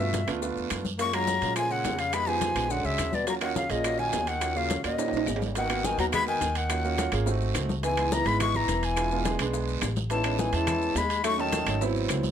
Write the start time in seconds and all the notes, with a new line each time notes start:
Already playing: G2 B2 E5
0.00 A3 B3 D4 F4, high bongo, high conga, maracas
0.14 high bongo, high conga, high timbale, short guiro, maracas
0.27 D2 A3 B3 D4 F4, high conga, high timbale, short guiro, claves, maracas
0.42 A3 B3 D4 F4, high bongo, high conga, long guiro, maracas
0.56 E2, high bongo, high conga, maracas
0.70 F#2, high bongo, low bongo, high conga, high timbale, short guiro, claves, maracas
0.85 high conga, short guiro, maracas
0.98 G#3 A#3 C#4 F4 C#6, high bongo, high conga, high timbale, long guiro, maracas
1.13 F#3 G#3 A#3 C#4 F4 A#5, high bongo, high conga, high timbale, claves, maracas
1.27 high bongo, high conga, short guiro, maracas
1.42 A#2 G#3 A#3 C#4 F4, high bongo, high conga, high timbale, short guiro, maracas
1.55 F3 G#3 A#3 C#4 F4 G#5, high bongo, high conga, high timbale, long guiro, claves, maracas
1.70 C#3 F#5, high bongo, high conga, maracas
1.84 F2, high bongo, low bongo, high conga, high timbale, low timbale, short guiro, maracas
1.99 C#3 F5, high conga, high timbale, short guiro, maracas
2.13 G#3 B3 D#4 G4 B5, high bongo, high conga, high timbale, long guiro, claves, maracas
2.27 F3 G#3 B3 D#4 G4 G#5, high bongo, high conga, maracas
2.41 high bongo, high conga, high timbale, short guiro, maracas
2.55 A#1 G#3 B3 D#4 G4, high bongo, high conga, high timbale, short guiro, claves, maracas
2.69 D3 G#3 C#4 D4 F#4 F#5, high bongo, high conga, long guiro, maracas
2.84 C#2 C#3 E5, high bongo, high conga, maracas
2.98 D#2, high bongo, low bongo, high conga, high timbale, short guiro, claves, maracas
3.12 B2 D5, high conga, short guiro, maracas
3.27 F#3 A#3 C#4 F4 F#4 A#5, high bongo, high timbale, long guiro, maracas
3.41 D#3 A#3 C#4 F4 F#4 F#5, high bongo, high conga, high timbale, claves, maracas
3.55 C#3 F5, high bongo, high conga, short guiro, maracas
3.69 A#1 A#2 A#3 C#4 F4 G#4 D#5, high bongo, high conga, high timbale, short guiro, maracas
3.84 A#3 C#4 F4 F#4, high bongo, high conga, high timbale, long guiro, claves, maracas
3.98 D#3 G#5, high bongo, high conga, maracas
4.13 D#2, high bongo, low bongo, high conga, high timbale, low timbale, short guiro, maracas
4.27 D#3 F#5, high conga, high timbale, short guiro, maracas
4.40 A#3 C#4 F4 F#4, high bongo, high conga, high timbale, long guiro, claves, maracas
4.55 C#3 A#3 C#4 F4 F#4 F5, high bongo, high conga, maracas
4.70 high bongo, high conga, high timbale, short guiro, maracas
4.83 D#2 A#2 A#3 C#4 F4 F#4 D#5, high bongo, high conga, high timbale, short guiro, claves, maracas
4.98 A#3 C#4 D#4 G4, high bongo, high conga, high timbale, long guiro, maracas
5.08 A#1, high timbale
5.13 high bongo, high conga, maracas
5.17 high timbale
5.26 G#1, high bongo, low bongo, high conga, low timbale, short guiro, claves, maracas
5.36 low timbale
5.41 high conga, short guiro, maracas
5.46 low timbale
5.55 D#3 A#3 B3 D#4 F#4 F#5, high bongo, high conga, high timbale, long guiro, maracas
5.69 A#3 B3 D#4 F#4, high bongo, high conga, high timbale, claves, maracas
5.83 D#3 A#3 B3 D#4 F#4 G#5, high bongo, high conga, short guiro, maracas
5.98 D#2 F#3 A#3 B3 D#4 F#4 A#5, high bongo, high conga, high timbale, short guiro, maracas
6.12 G#3 B5, high bongo, high conga, low conga, high timbale, long guiro, claves, maracas
6.27 D#3 G#5, high bongo, high conga, maracas
6.41 D#2, high bongo, low bongo, high conga, high timbale, short guiro, maracas
6.55 D#3 F#5, high conga, high timbale, short guiro, maracas
6.69 A#3 C#4 F4 F#4, high bongo, high conga, high timbale, long guiro, claves, maracas
6.84 A#3 C#4 F4 F#4, high bongo, high conga, maracas
6.98 A#3 C#4 F4 F#4, high bongo, high conga, high timbale, short guiro, maracas
7.12 G#1 A#3 C#4 F4 G#4, high bongo, high conga, high timbale, short guiro, claves, maracas
7.26 A3 C4 D#4 F#4, high bongo, high conga, long guiro, maracas
7.41 high conga, maracas
7.55 C#2, high bongo, low bongo, high conga, high timbale, short guiro, claves, maracas
7.69 high conga, short guiro, maracas
7.83 E3 G#3 B3 D#4 E4 G#5, high bongo, high conga, high timbale, long guiro, maracas
7.97 G#3 B3 D#4 E4, high bongo, high conga, high timbale, claves, maracas
8.11 E3 G#3 B3 D#4 E4 A#5, high bongo, high conga, short guiro, maracas
8.25 G#1 G#3 B3 D#4 E4 B5, high bongo, high timbale, short guiro, maracas
8.40 G#3 C#6, high bongo, high conga, low conga, high timbale, long guiro, claves, maracas
8.54 E3 A#5, high conga, low conga, maracas
8.67 E1, high bongo, low bongo, high conga, high timbale, short guiro, maracas
8.82 E3 G#5, high conga, high timbale, short guiro, maracas
8.96 G#3 B3 D4 F4, high bongo, high conga, high timbale, long guiro, claves, maracas
9.11 G#3 B3 D4 F4, high bongo, high conga, maracas
9.25 G#3 B3 D4 G#4, high bongo, high conga, high timbale, short guiro, maracas
9.39 B1 G#3 B3 D4 G#4, high bongo, high conga, high timbale, short guiro, claves, maracas
9.53 high bongo, high conga, long guiro, maracas
9.68 high bongo, high conga, maracas
9.82 A1, high bongo, low bongo, high conga, high timbale, low timbale, short guiro, claves, maracas
9.96 high conga, short guiro, maracas
10.10 E3 G#3 B3 C#4 D#4 A5, high bongo, high conga, high timbale, long guiro, maracas
10.24 G#3 B3 C#4 D#4, high bongo, high conga, high timbale, claves, maracas
10.38 E3 G#3 B3 C#4 D#4 G#5, high bongo, high conga, short guiro, maracas
10.52 E2 E3 G#3 B3 C#4 E4 A5, high bongo, high conga, high timbale, short guiro, maracas
10.67 high bongo, high conga, low conga, high timbale, long guiro, claves, maracas
10.81 high bongo, maracas
10.95 D#2 G#3 B5, high bongo, low bongo, high conga, high timbale, low timbale, short guiro, maracas
11.10 high conga, high timbale, short guiro, maracas
11.24 F#3 A3 C#4 D#4 C#6, high bongo, high conga, high timbale, long guiro, claves, maracas
11.38 D#3 F#3 A3 C#4 D#4 A5, high bongo, high conga, maracas
11.52 F#3 A3 C#4 D#4, high bongo, high conga, high timbale, short guiro, maracas
11.66 G#1 F#3 A3 C#4 D#4, high timbale, short guiro, claves, maracas
11.81 F#3 B3 C4 E4, high bongo, high conga, long guiro, maracas
11.95 high bongo, high conga, maracas
12.09 C#2, high bongo, low bongo, high conga, high timbale, short guiro, claves, maracas
12.23 high conga, short guiro, maracas